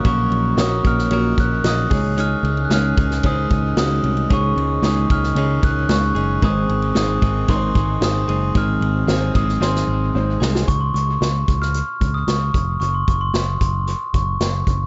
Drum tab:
RD |x-x-x-x-x-x-x-x-|x-xxx-x-x-x-x-xx|x-x-x-x-x-x-x-x-|x-xxx-x-x-x-x-x-|
HH |--------------o-|p---------------|----------------|----------------|
SD |----o--o----o---|----o--o----o---|----o--o----o---|----o-------o---|
BD |o-----o---o---o-|------o-o-o-----|o-----o---o-----|o-----o-o-o-----|

RD |x-x-x-x---------|----------------|----------------|
HH |----------------|x-x-x-x-x-x-x-x-|x-x-x-x-x-x-x-x-|
SD |----o--ooo----oo|----o--o----o---|----o-------o---|
BD |o-----o---------|o-----o---o---o-|--o---o---o---o-|